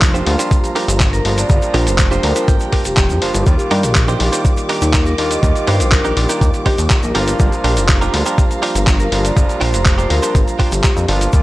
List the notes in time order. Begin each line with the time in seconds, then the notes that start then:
Already playing: F1 F3 G3 A#3 D4 F4 G4 F5 A#5
0.02 kick, clap, closed hi-hat, shaker
0.14 D4 F4 G4 C5, closed hi-hat, shaker
0.26 D2 F3 G3 A#3 D4 F4, open hi-hat
0.39 D4 F4 G4 C5, closed hi-hat, shaker
0.51 kick, closed hi-hat, shaker
0.64 closed hi-hat, shaker
0.75 D4 F4 G4 A#4, open hi-hat
0.88 G1, closed hi-hat, shaker
1.00 muted clean electric guitar stroke, kick, clap, closed hi-hat, shaker
1.13 A#4, closed hi-hat, shaker
1.25 G1 F3 G3 A#3 D4 F4 G5, open hi-hat
1.37 D5, muted clean electric guitar stroke, closed hi-hat, shaker
1.49 G1 F3 G3 A#3 D4 F4, kick, closed hi-hat, shaker
1.62 closed hi-hat, shaker
1.74 A#1 D4 F4 G4 A#4 C5, open hi-hat
1.87 F1, closed hi-hat, shaker
1.98 kick, clap, closed hi-hat, shaker
2.11 D4 F4 G4 C5, closed hi-hat, shaker
2.23 D2 F3 G3 A#3 D4 F4 A#4 A#5, open hi-hat
2.36 D4 F4 G4 C5, closed hi-hat, shaker
2.48 G1 G5, kick, closed hi-hat, shaker
2.60 closed hi-hat, shaker
2.72 D4 F4 G4 A#4, kick, open hi-hat
2.85 F1 G4, closed hi-hat, shaker
2.97 F1 G5, muted clean electric guitar stroke, kick, clap, closed hi-hat, shaker
3.09 F2, closed hi-hat, shaker
3.21 G1 F3 G3 A#3 D4 F4 C5, open hi-hat
3.34 G1, closed hi-hat, shaker
3.46 D#2 D#3 G3 A#3 F4 D5 D6, kick, closed hi-hat, shaker
3.59 closed hi-hat, shaker
3.71 G2 D4 D#4 G4 A#4, open hi-hat
3.83 A#1, closed hi-hat, shaker
3.95 kick, clap, closed hi-hat, shaker
4.08 D4 D#4 G4 C5, closed hi-hat, shaker
4.19 A#1 D#3 G3 A#3 F4 D5, open hi-hat
4.32 D4 D#4 G4 C5, closed hi-hat, shaker
4.45 kick, closed hi-hat, shaker
4.57 closed hi-hat, shaker
4.69 D4 D#4 G4 A#4, open hi-hat
4.81 D#2, closed hi-hat, shaker
4.93 kick, clap, closed hi-hat, shaker
5.05 A#4, closed hi-hat, shaker
5.18 D#2 D#3 G3 A#3 D4 F4, open hi-hat
5.31 D#5, muted clean electric guitar stroke, closed hi-hat, shaker
5.42 D#2 D#3 G3 A#3 F4 D5, kick, closed hi-hat, shaker
5.55 closed hi-hat, shaker
5.67 G2 D4 D#4 G4 C5, open hi-hat
5.80 A#1, closed hi-hat, shaker
5.92 A#4, kick, clap, closed hi-hat, shaker
6.04 D4 D#4 G4 A#4, closed hi-hat, shaker
6.16 A#1 D#3 G3 A#3 F4 D5, open hi-hat
6.29 D4 D#4 G4 A#4, closed hi-hat, shaker
6.41 D#2, kick, closed hi-hat, shaker
6.54 closed hi-hat, shaker
6.66 D4 D#4 G4 C5, kick, open hi-hat
6.78 D#2, closed hi-hat, shaker
6.90 kick, clap, closed hi-hat, shaker
7.03 A#1 A#4, closed hi-hat, shaker
7.14 G1 F3 G3 A#3 D4 F4 G4 A#4 F5 A#5, open hi-hat
7.27 closed hi-hat, shaker
7.39 G1 F3 G3 A#3 D4 F4, kick, closed hi-hat, shaker
7.52 closed hi-hat, shaker
7.64 A#1 D4 F4 G4 A#4, open hi-hat
7.76 F1, closed hi-hat, shaker
7.88 kick, clap, closed hi-hat, shaker
8.01 D4 F4 G4 A#4, closed hi-hat, shaker
8.12 D2 F3 G3 A#3 D4 F4, open hi-hat
8.26 D4 F4 G4 A#4, closed hi-hat, shaker
8.38 kick, closed hi-hat, shaker
8.51 closed hi-hat, shaker
8.62 D4 F4 G4 A#4, open hi-hat
8.75 G1, closed hi-hat, shaker
8.87 muted clean electric guitar stroke, kick, clap, closed hi-hat, shaker
8.99 A#4, closed hi-hat, shaker
9.12 G1 F3 G3 A#3 D4 F4, open hi-hat
9.24 D5, muted clean electric guitar stroke, closed hi-hat, shaker
9.36 G1 F3 G3 A#3 D4 F4, kick, closed hi-hat, shaker
9.49 closed hi-hat, shaker
9.61 A#1 D4 F4 G4 C5, open hi-hat
9.73 F1, closed hi-hat, shaker
9.85 kick, clap, closed hi-hat, shaker
9.98 D4 F4 G4 A#4 C5, closed hi-hat, shaker
10.09 D2 F3 G3 A#3 D4 F4 A#4, open hi-hat
10.22 D4 F4 G4 C5, closed hi-hat, shaker
10.35 G1, kick, closed hi-hat, shaker
10.48 closed hi-hat, shaker
10.59 D4 F4 G4 C5, kick, open hi-hat
10.72 G1 G4, closed hi-hat, shaker
10.84 muted clean electric guitar stroke, kick, clap, closed hi-hat, shaker
10.97 F2, closed hi-hat, shaker
11.08 G1 F3 G3 A#3 D4 F4, open hi-hat
11.21 muted clean electric guitar stroke, closed hi-hat, shaker
11.32 D#2 D#3 G3 A#3 F4 G4 D5 D6, kick, closed hi-hat, shaker